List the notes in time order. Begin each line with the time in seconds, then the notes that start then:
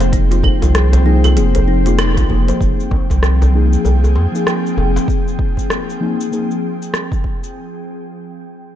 Already playing: F1 F3 A#3 C4 D#4 G#4 C5 G5
0.00 C5, closed hi-hat, djembe slap, cabasa
0.13 D#4, kick, closed hi-hat, cabasa
0.31 F4, closed hi-hat, cabasa
0.43 D#4, kick, djembe bass, claves
0.62 C2 F4, kick, closed hi-hat, djembe slap, djembe tone, cabasa
0.75 G#4, cross-stick, closed hi-hat, cabasa
0.93 C5, closed hi-hat, djembe slap, djembe bass, cabasa
1.05 F3 A#3 D#4 G#4
1.24 F4, closed hi-hat, djembe tone, cabasa, claves
1.36 F1 F3 A#3 D#4 G#4, closed hi-hat, cabasa
1.55 C5, closed hi-hat, djembe bass, cabasa
1.68 D#4
1.86 F3 A#3 D#4 F4 G#4, closed hi-hat, cabasa
1.99 D#4, cross-stick, closed hi-hat, cabasa, claves
2.17 C2 F4, kick, closed hi-hat, djembe tone, cabasa
2.29 F1 F3 A#3 D#4 G#4, kick
2.48 F3 A#3 D#4 G#4 C5, closed hi-hat, djembe tone, cabasa
2.61 F1 F3 C4 G#4 G5, kick, cabasa
2.80 cabasa
2.91 kick, djembe tone, djembe bass
3.10 C2, kick, djembe slap, cabasa
3.23 cross-stick, cabasa
3.42 djembe slap, djembe bass, cabasa
3.52 F3 A#3 D#4 G#4
3.73 cabasa
3.85 C2, djembe bass, cabasa
4.04 djembe tone, cabasa
4.16 F2, djembe slap
4.32 F3 A#3 D#4, cabasa
4.36 G#4
4.47 cross-stick, cabasa
4.66 cabasa
4.77 F1, djembe tone
4.96 djembe slap, cabasa
5.08 kick, cabasa
5.28 cabasa
5.39 kick
5.57 kick, cabasa
5.70 cross-stick, cabasa
5.90 cabasa
6.00 F3 A#3 D#4 G#4
6.21 cabasa
6.31 F3 A#3 D#4 G#4, cabasa
6.51 cabasa
6.82 cabasa
6.94 cross-stick, cabasa
7.12 kick, cabasa
7.24 kick
7.44 cabasa